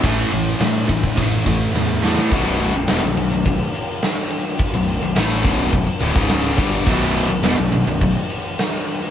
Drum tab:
CC |----------------|x-x-x-x-x-x-x-x-|x-x-x-x-x-x-x-x-|x-x-x-x-x-x-x-x-|
RD |x-x-x-x-x-x-----|----------------|----------------|----------------|
SD |----o-------o-oo|----o-------o---|----o-------o---|----o-------o---|
BD |o-----ooo-o-----|o-------o-------|o-----o-o--o--o-|o-------o-------|